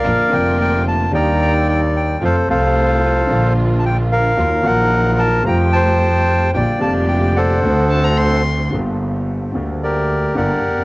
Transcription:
<<
  \new Staff \with { instrumentName = "Violin" } { \time 4/4 \key bes \major \tempo 4 = 111 r1 | r1 | r1 | r2 r8 a''16 bes''16 c'''4 |
\key g \minor r1 | }
  \new Staff \with { instrumentName = "Bandoneon" } { \time 4/4 \key bes \major << { f''8 g''8 g''8 a''8 bes''8 bes''8 g''8 g''8 | f''8 f''2 r16. a''32 g''8 f''8~ | f''8 ges''4 a''8 bes''8 a''4. | g''8 a''8 g''8 ges''2 r8 |
\key g \minor r2 d''4 fis''4 | } \\ { <bes' d''>4. r8 <d'' g''>2 | <a' c''>8 <a' c''>2 r4 bes'8~ | bes'8 bes'4. g''8 c''4. | d''4. <a' c''>2 r8 |
r2 <g' bes'>4 <bes' d''>4 | } >> }
  \new Staff \with { instrumentName = "String section" } { \time 4/4 \key bes \major <bes d' f'>8 <bes d' f'>4. <g ees'>2 | <a c' f'>8 <a c' f'>4. <bes d' f'>2 | <ges ees' f'>8 <f ges ees'>4. <a f' g'>2 | <bes d' g'>8 <bes d' g'>4. <c' d' fis'>2 |
\key g \minor r1 | }
  \new Staff \with { instrumentName = "Grand piano" } { \clef bass \time 4/4 \key bes \major <bes,, bes, d f bes f'>8 <f,, f, d f bes f'>4. <ees, ees g bes d' ees'>2 | <f, c f a f'>8 <c, c f a f'>4. <bes,, bes, d f bes f'>2 | <ees, ees ges bes f'>8 <bes,, bes, ees f ges bes>4. <f, c f g a f'>2 | <bes,, bes, d g bes f'>8 <f,, f, d g bes f'>4. <d, d a c' fis'>2 |
\key g \minor <g,, g, d g bes g'>4. <d, d g bes g'>4. <g,, g, d g bes g'>8 r32 e,32 f,32 r32 | }
  \new Staff \with { instrumentName = "Double bass" } { \clef bass \time 4/4 \key bes \major bes,,8 f,,4. ees,2 | f,8 c,4. bes,,2 | ees,8 bes,,4. f,2 | bes,,8 f,,4. d,2 |
\key g \minor g,,4. d,4. g,,8 f,,8 | }
>>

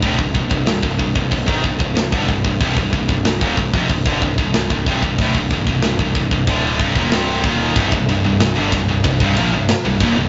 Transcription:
<<
  \new Staff \with { instrumentName = "Distorted electric guitar" } { \clef bass \time 4/4 \key c \minor \tempo 4 = 93 <d, a,>16 <c, g,>16 <c, g,>16 <c, g,>16 <c, g,>16 <c, g,>16 <c, g,>16 <c, g,>16 <c, g,>16 <aes, ees>16 <c, g,>16 <c, g,>16 <c, g,>16 <g, d>16 <c, g,>16 <c, g,>16 | <c, g,>16 <c, g,>16 <c, g,>16 <c, g,>16 <c, g,>16 <ees, bes,>16 <c, g,>16 <f, c>16 <c, g,>16 <g, d>16 <c, g,>16 <c, g,>16 <c, g,>16 <c, g,>16 <c, g,>16 <c, g,>16 | <d, a,>16 <c, g,>16 <c, g,>16 <c, g,>16 <c, g,>16 <c, g,>16 <c, g,>16 <c, g,>16 <d, a, d>8 <c, g,>16 <ees, bes,>16 <c, g, c>8 <ees, bes, ees>8 | <c, g,>16 <c, g,>16 <c, g,>16 <c, g,>16 <c, g,>16 <g, d>16 <c, g,>16 <c, g,>16 <c, g,>16 <c, g,>16 <bes, f>16 <c, g,>16 r16 <c, g,>16 <ees, bes,>16 <c, g,>16 | }
  \new Staff \with { instrumentName = "Distorted electric guitar" } { \clef bass \time 4/4 \key c \minor <d, a,>16 <c, g,>16 <c, g,>16 <c, g,>16 <c, g,>16 <c, g,>16 <c, g,>16 <c, g,>16 <c, g,>16 <aes, ees>16 <c, g,>16 <c, g,>16 <c, g,>16 <g, d>16 <c, g,>16 <c, g,>16 | <c, g,>16 <c, g,>16 <c, g,>16 <c, g,>16 <c, g,>16 <ees, bes,>16 <c, g,>16 <f, c>16 <c, g,>16 <g, d>16 <c, g,>16 <c, g,>16 <c, g,>16 <c, g,>16 <c, g,>16 <c, g,>16 | <d, a,>16 <c, g,>16 <c, g,>16 <c, g,>16 <c, g,>16 <c, g,>16 <c, g,>16 <c, g,>16 <d, a, d>8 <c, g,>16 <ees, bes,>16 <c, g, c>8 <ees, bes, ees>8 | <c, g,>16 <c, g,>16 <c, g,>16 <c, g,>16 <c, g,>16 <g, d>16 <c, g,>16 <c, g,>16 <c, g,>16 <c, g,>16 <bes, f>16 <c, g,>16 r16 <c, g,>16 <ees, bes,>16 <c, g,>16 | }
  \new Staff \with { instrumentName = "Distorted electric guitar" } { \clef bass \time 4/4 \key c \minor r1 | r1 | r1 | <c, g,>16 <c, g,>16 <c, g,>16 <c, g,>16 <c, g,>16 <g, d>16 <c, g,>16 <c, g,>16 <c, g,>16 <c, g,>16 <bes, f>16 <c, g,>16 r16 <c, g,>16 <ees, bes,>16 <c, g,>16 | }
  \new Staff \with { instrumentName = "Picked electric bass" } { \clef bass \time 4/4 \key c \minor d,,16 c,,16 c,,16 c,,16 c,,16 c,,16 c,,16 c,,16 c,,16 aes,,16 c,,16 c,,16 c,,16 g,,16 c,,16 c,,16 | c,,16 c,,16 c,,16 c,,16 c,,16 ees,,16 c,,16 f,,16 c,,16 g,,16 c,,16 c,,16 c,,16 c,,16 c,,16 c,,16 | d,,16 c,,16 c,,16 c,,16 c,,16 c,,16 c,,16 c,,16 d,,8 c,,16 ees,,16 c,,8 ees,,8 | c,,16 c,,16 c,,16 c,,16 c,,16 g,,16 c,,16 c,,16 c,,16 c,,16 bes,,16 c,,16 r16 c,,16 ees,,16 c,,16 | }
  \new DrumStaff \with { instrumentName = "Drums" } \drummode { \time 4/4 <hho bd>16 bd16 bd16 bd16 <hho sn>16 bd16 bd16 bd16 <hho bd>16 bd16 bd16 bd16 <hho sn>16 bd16 bd16 bd16 | <hho bd>16 bd16 bd16 bd16 <hho sn>16 bd16 bd16 bd16 <hho bd>16 bd16 bd16 bd16 <hho sn>16 bd16 bd16 bd16 | <hho bd>16 bd16 bd16 bd16 <hho sn>16 bd16 bd16 bd16 <hho bd>8 bd16 bd16 <hho sn>8 bd8 | <bd cymr>16 bd16 cymr8 <cymr sn>8 <bd cymr>8 <bd cymr>16 bd16 cymr8 <cymr sn>8 <bd cymr>8 | }
>>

